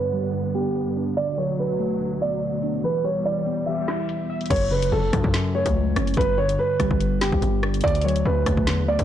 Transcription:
0.00 0.34 G2 medium
0.00 1.15 G2 medium
0.00 0.75 D3 medium
0.00 1.15 D3 medium
0.00 1.15 B3 medium
0.00 0.51 B4 medium
0.13 1.17 G3 medium
0.13 closed hi-hat medium
0.34 1.17 G2 medium
0.34 closed hi-hat medium
0.55 1.17 B3 medium
0.55 1.13 G4 medium
0.55 closed hi-hat medium
0.75 closed hi-hat medium
0.96 1.17 D4 medium
1.07 closed hi-hat medium
1.14 2.82 D2 medium
1.14 4.47 B2 medium
1.14 1.58 D3 medium
1.14 2.82 F#3 medium
1.14 1.36 D5 loud
1.14 closed hi-hat medium
1.21 closed hi-hat medium
1.28 closed hi-hat medium
1.35 2.42 F#3 medium
1.35 1.57 C#5 medium
1.35 closed hi-hat medium
1.42 closed hi-hat medium
1.49 closed hi-hat medium
1.59 1.99 D3 medium
1.59 2.18 B4 medium
1.80 2.84 A3 medium
1.80 closed hi-hat medium
2.00 2.84 D3 medium
2.00 closed hi-hat medium
2.21 2.84 B3 medium
2.21 2.80 D5 medium
2.32 closed hi-hat medium
2.63 2.84 D4 medium
2.63 closed hi-hat medium
2.74 closed hi-hat soft
2.81 4.49 E2 medium
2.81 3.24 E3 medium
2.81 4.49 G3 medium
2.81 3.03 B4 medium
2.81 closed hi-hat medium
2.87 closed hi-hat medium
3.04 4.09 G3 medium
3.04 3.23 C#5 medium
3.16 closed hi-hat medium
3.25 3.66 E3 medium
3.25 3.65 D5 medium
3.46 4.50 B3 medium
3.46 closed hi-hat medium
3.66 4.51 E3 medium
3.66 4.46 E5 medium
3.66 closed hi-hat medium
3.88 4.50 E4 medium
3.88 snare loud
3.88 closed hi-hat medium
4.09 closed hi-hat medium
4.30 4.50 E5 medium
4.41 closed hi-hat soft
4.46 closed hi-hat medium
4.50 4.90 F#1 loud
4.50 4.91 F#2 medium
4.50 4.69 C#5 loud
4.50 kick loud
4.50 closed hi-hat medium
4.50 crash loud
4.56 closed hi-hat medium
4.71 5.76 C#3 medium
4.71 4.90 B4 medium
4.82 closed hi-hat medium
4.92 5.12 F#1 loud
4.92 5.33 F#2 medium
4.92 5.51 A4 medium
5.13 5.24 F#2 loud
5.13 6.17 F#3 medium
5.13 kick loud
5.13 cross-stick medium
5.13 closed hi-hat medium
5.24 5.64 F#2 loud
5.24 kick loud
5.34 6.17 F#2 medium
5.34 snare loud
5.34 closed hi-hat medium
5.55 6.17 A3 medium
5.55 6.14 C#5 medium
5.66 5.95 C#2 loud
5.66 kick loud
5.66 closed hi-hat medium
5.96 6.16 F#1 loud
5.96 6.17 C#4 medium
5.96 cross-stick loud
5.96 closed hi-hat medium
6.07 closed hi-hat soft
6.14 6.57 G1 loud
6.14 6.58 G2 loud
6.14 6.36 B4 loud
6.14 kick loud
6.14 closed hi-hat medium
6.21 closed hi-hat medium
6.38 7.42 D3 medium
6.38 6.57 C#5 medium
6.49 closed hi-hat medium
6.59 6.99 G2 medium
6.59 7.18 B4 medium
6.80 6.90 G1 loud
6.80 7.84 G3 loud
6.80 kick loud
6.80 cross-stick medium
6.80 closed hi-hat medium
6.91 7.23 G1 loud
6.91 kick loud
7.00 7.84 G2 medium
7.00 closed hi-hat medium
7.21 7.32 F#1 loud
7.21 7.84 B3 medium
7.21 7.80 G4 medium
7.21 snare loud
7.21 closed hi-hat medium
7.32 7.42 G1 loud
7.32 kick loud
7.42 7.82 G1 loud
7.42 closed hi-hat medium
7.63 7.84 D4 medium
7.63 cross-stick loud
7.74 closed hi-hat medium
7.81 8.24 D2 loud
7.81 8.24 D3 medium
7.81 8.03 D5 loud
7.81 kick loud
7.81 closed hi-hat medium
7.88 closed hi-hat medium
7.95 closed hi-hat medium
8.01 9.04 F#3 medium
8.01 8.23 C#5 medium
8.01 closed hi-hat medium
8.08 closed hi-hat medium
8.16 closed hi-hat medium
8.25 8.45 D2 loud
8.25 8.66 D3 medium
8.25 8.84 B4 medium
8.46 8.69 D2 loud
8.46 9.04 A3 medium
8.46 kick loud
8.46 cross-stick medium
8.46 closed hi-hat medium
8.57 kick loud
8.67 8.85 E2 loud
8.67 9.04 D3 medium
8.67 snare loud
8.67 closed hi-hat medium
8.83 8.98 D2 loud
8.88 9.04 B3 medium
8.88 9.04 D5 medium
8.99 9.04 D2 loud
8.99 kick loud
8.99 closed hi-hat medium

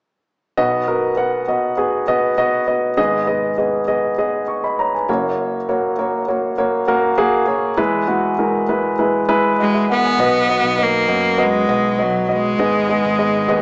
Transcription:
0.57 2.94 B1 medium
0.57 2.94 B2 medium
0.57 0.80 B3 medium
0.57 0.81 F#4 medium
0.57 0.80 D#5 medium
0.88 1.11 B3 medium
0.88 1.11 F#4 medium
0.88 1.10 A#4 medium
1.17 1.40 B3 medium
1.17 1.40 F#4 medium
1.17 1.40 F#5 medium
1.48 1.71 B3 medium
1.48 1.71 F#4 medium
1.48 1.71 D#5 medium
1.77 2.00 B3 medium
1.77 2.00 F#4 medium
1.77 2.01 G#4 medium
2.08 2.31 B3 medium
2.08 2.31 F#4 medium
2.08 2.31 D#5 medium
2.38 2.61 B3 medium
2.38 2.61 F#4 medium
2.38 2.61 D#5 medium
2.67 2.90 B3 medium
2.67 2.90 F#4 medium
2.67 2.91 D#5 medium
2.97 5.04 G#1 medium
2.97 5.04 G#2 medium
2.97 3.21 B3 medium
2.97 3.20 G#4 medium
2.97 3.21 D#5 medium
3.27 3.50 B3 medium
3.27 3.50 G#4 medium
3.27 3.50 D#5 medium
3.58 3.81 B3 medium
3.58 3.81 G#4 medium
3.58 3.81 D#5 medium
3.88 4.11 B3 medium
3.88 4.11 G#4 medium
3.88 4.11 D#5 medium
4.18 4.41 B3 medium
4.18 4.41 G#4 medium
4.18 4.41 D#5 medium
4.48 4.62 C#6 soft
4.64 4.78 D#5 soft
4.64 4.78 B5 medium
4.79 4.93 C#5 soft
4.79 4.93 A#5 medium
4.94 5.22 B4 soft
4.94 5.22 G#5 soft
5.09 7.45 F#1 medium
5.09 7.45 F#2 medium
5.09 5.57 A#3 medium
5.09 5.57 F#4 medium
5.09 5.57 C#5 medium
5.69 5.91 A#3 medium
5.69 5.91 F#4 medium
5.69 5.91 C#5 medium
5.99 6.21 A#3 medium
5.99 6.21 F#4 medium
5.99 6.21 C#5 medium
6.28 6.51 A#3 medium
6.28 6.51 F#4 medium
6.28 6.51 C#5 medium
6.58 6.81 A#3 medium
6.58 6.81 F#4 medium
6.58 6.81 C#5 medium
6.88 7.11 A#3 medium
6.88 7.11 F#4 medium
6.88 7.11 A#4 medium
7.18 7.41 A#3 medium
7.18 7.41 F#4 medium
7.18 7.41 G#4 medium
7.47 7.70 A#3 medium
7.47 7.71 F#4 medium
7.47 7.71 C#5 medium
7.77 10.14 E2 medium
7.77 10.14 E3 medium
7.77 8.01 G#3 medium
7.77 8.01 E4 medium
7.77 8.01 B4 medium
8.08 8.31 G#3 medium
8.08 8.31 E4 medium
8.08 8.31 F#4 medium
8.38 8.61 G#3 medium
8.38 8.61 E4 medium
8.38 8.61 A#4 medium
8.69 8.91 G#3 medium
8.69 8.92 E4 medium
8.69 8.92 B4 medium
8.99 9.22 G#3 medium
8.99 9.21 E4 medium
8.99 9.22 B4 medium
9.28 9.51 G#3 medium
9.28 9.51 E4 medium
9.28 9.51 B4 loud
9.59 9.88 G#3 medium
9.59 9.73 F#4 soft
9.59 9.73 D#5 medium
9.74 9.88 G#4 soft
9.74 9.88 E5 medium
9.90 10.84 B3 medium
9.90 10.04 A#4 soft
9.90 10.04 F#5 medium
10.05 10.33 B4 soft
10.05 10.33 G#5 soft
10.19 10.61 B1 medium
10.19 11.05 B2 medium
10.19 10.42 B3 medium
10.19 10.42 F#4 medium
10.19 10.42 D#5 medium
10.49 10.72 B3 medium
10.49 10.72 F#4 medium
10.49 10.72 D#5 medium
10.64 11.05 B1 medium
10.78 11.01 B3 medium
10.78 11.02 F#4 medium
10.78 11.01 D#5 medium
10.83 11.44 A#3 medium
11.08 11.65 F#2 medium
11.08 11.31 B3 medium
11.08 11.31 F#4 medium
11.08 11.31 D#5 medium
11.38 11.61 B3 medium
11.38 11.61 F#4 medium
11.38 11.61 D#5 medium
11.42 12.04 G#3 medium
11.69 12.55 B1 medium
11.69 11.92 B3 medium
11.69 11.92 F#4 medium
11.69 11.92 D#5 medium
11.99 12.21 B3 medium
11.99 12.22 F#4 medium
11.99 12.22 D#5 medium
12.03 12.33 F#3 medium
12.29 13.62 G#3 medium
12.29 12.52 B3 medium
12.29 12.52 F#4 medium
12.29 12.52 D#5 medium
12.58 13.00 G#1 medium
12.58 13.45 G#2 medium
12.58 12.82 B3 medium
12.58 12.82 G#4 medium
12.58 12.82 D#5 medium
12.89 13.12 B3 medium
12.89 13.12 G#4 medium
12.89 13.12 D#5 medium
13.05 13.46 G#1 medium
13.19 13.42 B3 medium
13.19 13.42 G#4 medium
13.19 13.42 D#5 medium
13.48 13.62 D#2 medium
13.48 13.62 B3 medium
13.48 13.62 G#4 medium
13.48 13.62 D#5 medium

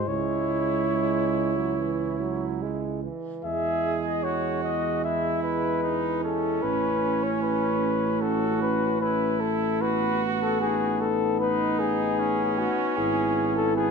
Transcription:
0.06 3.07 C#2 soft
0.06 0.83 G#3 soft
0.06 3.11 E4 soft
0.06 2.99 E4 soft
0.06 2.61 C#5 medium
0.93 1.59 G#3 soft
1.57 1.77 F#3 soft
1.78 2.19 E3 soft
2.19 2.64 F#3 soft
2.62 3.03 G#3 soft
3.03 3.43 E3 soft
3.44 6.60 E2 soft
3.44 6.65 G#3 soft
3.44 10.30 E4 soft
3.44 4.26 G#4 soft
3.44 4.00 E5 medium
4.05 4.24 D#5 medium
4.23 5.04 F#4 soft
4.23 4.63 C#5 medium
4.63 5.02 D#5 medium
5.04 5.82 E4 soft
5.04 5.43 E5 medium
5.43 6.22 B4 medium
5.83 6.23 D#4 soft
6.23 8.17 C#4 medium
6.23 6.64 A4 medium
6.62 12.67 A1 soft
6.62 9.64 C#4 soft
6.62 7.25 B4 medium
7.23 7.41 C#5 medium
7.42 8.23 B4 medium
8.21 9.04 F#4 medium
8.21 8.61 A4 medium
8.62 9.00 B4 medium
9.01 9.83 E4 soft
9.01 9.42 B4 medium
9.40 9.83 A4 medium
9.81 13.91 B3 medium
9.81 11.13 F#4 medium
9.81 10.25 B4 medium
10.42 10.61 A4 medium
10.61 12.99 D#4 medium
10.61 11.02 G#4 medium
11.01 11.39 A4 medium
11.40 12.21 D#4 medium
11.40 11.81 B4 medium
11.79 12.60 G#4 medium
12.20 13.75 C#4 medium
12.59 12.98 F#4 medium
12.97 13.91 G#1 medium
12.97 13.91 E4 medium
12.97 13.55 G#4 medium
13.56 13.76 A4 medium
13.76 13.91 B3 medium
13.76 13.91 G#4 medium

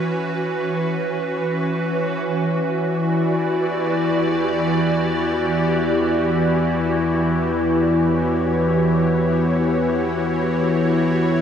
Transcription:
0.00 11.41 E3 medium
0.00 2.25 C#4 medium
0.00 11.41 F#4 medium
0.00 4.86 B4 medium
0.00 2.23 C#5 medium
2.24 11.41 E2 medium
2.24 11.41 E3 medium
2.24 11.41 B3 medium
2.41 11.41 E4 medium
2.59 7.94 D5 medium
2.94 11.41 G4 medium
7.64 11.41 C#5 medium

